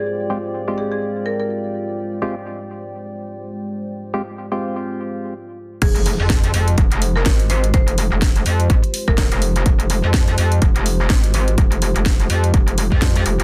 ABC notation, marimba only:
X:1
M:4/4
L:1/16
Q:"Swing 16ths" 1/4=125
K:Fdor
V:1 name="Marimba"
z6 A A z2 B B z4 | z16 | z16 | A z8 z2 B3 c z |
c z8 z2 B3 z2 | z16 | z16 |]